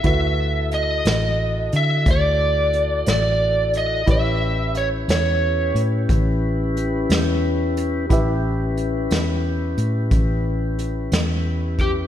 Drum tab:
HH |x-xx-xx-xx-x|x-xx-xx-xx-x|x-xx-xx-xx-x|
SD |---o-----o--|---o-----o--|---o-----o--|
BD |o-----o-----|o-----o-----|o-----o----o|